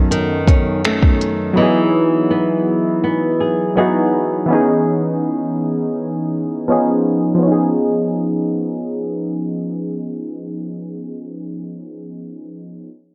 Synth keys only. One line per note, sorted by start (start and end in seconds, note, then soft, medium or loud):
0.00 1.51 F#3 medium
0.00 1.53 B3 medium
0.00 1.54 C#4 medium
0.00 1.55 D#4 medium
0.00 1.56 A4 medium
1.54 3.71 F#3 medium
1.54 3.72 B3 medium
1.58 3.73 D#4 medium
1.58 3.74 E4 medium
1.62 3.75 G#4 medium
3.76 4.49 F#3 medium
3.76 4.47 B3 medium
3.76 4.51 D#4 medium
3.76 4.51 E4 soft
3.80 4.52 F#4 medium
4.46 6.63 E3 medium
4.46 6.65 B3 medium
4.50 6.66 C#4 medium
4.50 6.67 D#4 medium
4.55 6.68 G#4 medium
6.68 7.33 F3 medium
6.68 7.37 B3 medium
6.68 7.42 C#4 medium
6.68 7.43 D#4 medium
6.72 7.44 G#4 medium
7.35 10.86 F3 medium
7.39 10.90 B3 medium
7.43 10.94 C#4 medium
7.47 10.99 D#4 medium
7.52 11.03 G#4 medium